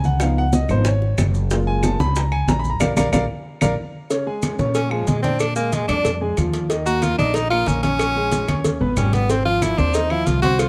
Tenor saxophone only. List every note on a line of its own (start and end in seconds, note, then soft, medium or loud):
4.75 4.93 C#4 medium
4.91 5.09 F3 medium
5.07 5.22 G#3 medium
5.23 5.42 C4 loud
5.40 5.55 D4 loud
5.56 5.74 A#3 loud
5.73 5.88 G#3 medium
5.88 6.19 D4 loud
6.86 7.04 F#4 loud
7.02 7.18 F4 loud
7.18 7.37 D4 loud
7.35 7.50 D#4 loud
7.50 7.69 F4 loud
7.67 7.82 C#4 loud
7.83 8.60 C#4 loud
8.98 9.15 C#4 medium
9.14 9.32 B3 loud
9.31 9.45 C4 medium
9.45 9.64 F4 loud
9.62 9.79 E4 loud
9.78 9.96 D4 loud
9.95 10.12 D#4 loud
10.10 10.28 E4 loud
10.26 10.41 F4 medium
10.42 10.61 F#4 loud
10.60 10.69 F4 loud